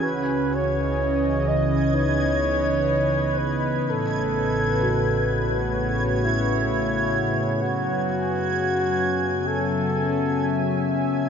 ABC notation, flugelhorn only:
X:1
M:4/4
L:1/8
Q:1/4=64
K:C#m
V:1 name="Flugelhorn"
B c2 d c3 B | A4 z E3 | F4 A3 z |]